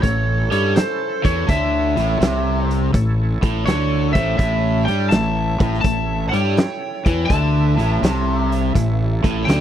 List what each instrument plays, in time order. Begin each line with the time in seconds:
0.02 fingered electric bass A1, overdriven electric guitar A2, tonewheel organ C#4 E4 A4, lead electric guitar A4 C#5, kick, closed hi-hat
0.51 fingered electric bass G2, overdriven electric guitar G3, lead electric guitar A4 C#5, closed hi-hat
0.76 lead electric guitar A4 C5, muted overdriven electric guitar stroke, muted fingered electric bass stroke, snare, closed hi-hat
1.24 fingered electric bass E2, overdriven electric guitar E3, lead electric guitar A4 C#5, kick, closed hi-hat
1.47 fingered electric bass D2, overdriven electric guitar D3, tonewheel organ E4 A4 C#5, lead electric guitar C#5 E5, kick, closed hi-hat
1.96 fingered electric bass A1, overdriven electric guitar A2, closed hi-hat
2.09 tonewheel organ E4 A4 C#5
2.20 fingered electric bass C2, overdriven electric guitar C3, snare, closed hi-hat
2.71 closed hi-hat
2.93 fingered electric bass A1, overdriven electric guitar A2, tonewheel organ E4 A4 C#5, kick, closed hi-hat
3.43 fingered electric bass A1, overdriven electric guitar A2, kick, closed hi-hat
3.66 fingered electric bass D2, overdriven electric guitar D3, lead electric guitar A4 C#5, snare, closed hi-hat
4.13 fingered electric bass A1, overdriven electric guitar A2, lead electric guitar C5 E5, kick, closed hi-hat
4.37 fingered electric bass A1, overdriven electric guitar A2, tonewheel organ E4 A4 C#5, lead electric guitar C#5 E5, kick, closed hi-hat
4.85 fingered electric bass G2, overdriven electric guitar G3, lead electric guitar C#5 G5, closed hi-hat
4.99 tonewheel organ E4 A4 C#5
5.09 fingered electric bass A1, overdriven electric guitar A2, lead electric guitar E5 A5, snare, closed hi-hat
5.60 fingered electric bass A1, overdriven electric guitar A2, kick, closed hi-hat
5.74 snare
5.80 overdriven electric guitar A2, tonewheel organ E4, lead electric guitar E5 A5
5.84 fingered electric bass A1, tonewheel organ A4 C#5, kick, closed hi-hat
6.28 lead electric guitar C#5 G5
6.33 fingered electric bass G2, overdriven electric guitar G3, closed hi-hat
6.57 muted fingered electric bass stroke, muted overdriven electric guitar stroke, snare, closed hi-hat
7.06 fingered electric bass E2, overdriven electric guitar E3, kick, closed hi-hat
7.26 tonewheel organ E4, lead electric guitar E5 A5
7.30 fingered electric bass D2, overdriven electric guitar D3, tonewheel organ A4 B4, kick, closed hi-hat
7.77 fingered electric bass A1, overdriven electric guitar A2, closed hi-hat
7.89 tonewheel organ E4 A4 C#5
8.02 fingered electric bass C2, overdriven electric guitar C3, snare, closed hi-hat
8.52 closed hi-hat
8.73 fingered electric bass A1, overdriven electric guitar A2, tonewheel organ E4 A4 C#5, kick, closed hi-hat
9.24 fingered electric bass A1, overdriven electric guitar A2, kick, closed hi-hat
9.43 lead electric guitar C#5 G5
9.47 fingered electric bass D2, overdriven electric guitar D3, snare, closed hi-hat